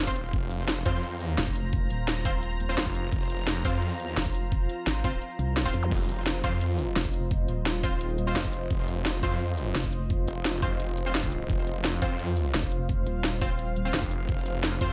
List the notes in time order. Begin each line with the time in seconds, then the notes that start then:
Already playing: F1 F4 C5 F5
0.07 C4 F4 C5, kick, shaker
0.12 E1
0.16 closed hi-hat, shaker
0.33 F1 A#5, kick, closed hi-hat
0.51 closed hi-hat, shaker
0.68 snare, closed hi-hat
0.86 F2 C4 F4 C5, kick, closed hi-hat, shaker
1.03 closed hi-hat
1.12 shaker
1.21 closed hi-hat, shaker
1.38 F1, snare, closed hi-hat
1.47 kick, shaker
1.56 closed hi-hat, shaker
1.73 kick, closed hi-hat
1.90 D#1, closed hi-hat, shaker
2.08 snare, closed hi-hat
2.25 C4 F4 C5, kick, closed hi-hat, shaker
2.43 closed hi-hat
2.52 shaker
2.60 closed hi-hat, shaker
2.69 C4 F4 C5
2.78 F1, snare, closed hi-hat
2.86 kick, shaker
2.95 closed hi-hat, shaker
3.12 F1, kick, closed hi-hat
3.30 closed hi-hat, shaker
3.47 snare, closed hi-hat
3.65 F2 C4 F4 C5, kick, closed hi-hat, shaker
3.82 closed hi-hat
3.91 shaker
4.00 closed hi-hat, shaker
4.17 F1, snare, closed hi-hat
4.26 kick, shaker
4.35 closed hi-hat, shaker
4.52 kick, closed hi-hat
4.69 closed hi-hat, shaker
4.87 G#1, snare, closed hi-hat
4.96 shaker
5.04 C4 F4 C5, kick, closed hi-hat, shaker
5.22 closed hi-hat
5.30 shaker
5.39 C2, closed hi-hat, shaker
5.57 snare, closed hi-hat
5.65 C4 F4 C5, kick, shaker
5.74 F2, closed hi-hat, shaker
5.83 zap
5.91 F1 D#5, kick, closed hi-hat, crash
6.09 closed hi-hat, shaker
6.26 snare, closed hi-hat
6.44 F2 C4 F4 C5, kick, closed hi-hat, shaker
6.61 closed hi-hat
6.70 shaker
6.79 closed hi-hat, shaker
6.96 F1, snare, closed hi-hat
7.05 kick, shaker
7.14 closed hi-hat, shaker
7.31 kick, closed hi-hat
7.48 D#1, closed hi-hat, shaker
7.66 snare, closed hi-hat
7.83 C4 F4 C5, kick, closed hi-hat, shaker
8.01 closed hi-hat
8.10 shaker
8.18 closed hi-hat, shaker
8.27 C4 F4 C5
8.36 F1, snare, closed hi-hat
8.44 kick, shaker
8.53 closed hi-hat, shaker
8.71 F1, kick, closed hi-hat
8.88 closed hi-hat, shaker
9.05 snare, closed hi-hat
9.23 F2 C4 F4 C5, kick, closed hi-hat, shaker
9.40 closed hi-hat
9.49 shaker
9.58 closed hi-hat, shaker
9.75 F1, snare, closed hi-hat
9.84 kick, shaker
9.93 closed hi-hat, shaker
10.10 kick, closed hi-hat
10.28 F1, closed hi-hat, shaker
10.45 snare, closed hi-hat
10.62 C4 F4 C5, kick, closed hi-hat, shaker
10.80 F1, closed hi-hat
10.89 shaker
10.97 closed hi-hat, shaker
11.06 C4 F4 C5
11.15 snare, closed hi-hat
11.23 kick, shaker
11.32 closed hi-hat, shaker
11.50 F1 F5, kick, closed hi-hat
11.67 closed hi-hat, shaker
11.84 snare, closed hi-hat
12.02 F2 C4 F4 C5, kick, closed hi-hat, shaker
12.19 closed hi-hat
12.28 shaker
12.37 closed hi-hat, shaker
12.54 F1, snare, closed hi-hat
12.63 kick, shaker
12.72 closed hi-hat, shaker
12.89 kick, closed hi-hat
13.07 D#1, closed hi-hat, shaker
13.24 snare, closed hi-hat
13.41 C4 F4 C5, kick, closed hi-hat, shaker
13.59 closed hi-hat
13.68 shaker
13.76 closed hi-hat, shaker
13.85 C4 F4 C5
13.94 F1, snare, closed hi-hat
14.03 kick, shaker
14.11 closed hi-hat, shaker
14.29 F1, kick, closed hi-hat
14.46 closed hi-hat, shaker
14.64 snare, closed hi-hat
14.81 F2 C4 F4 C5, kick, closed hi-hat, shaker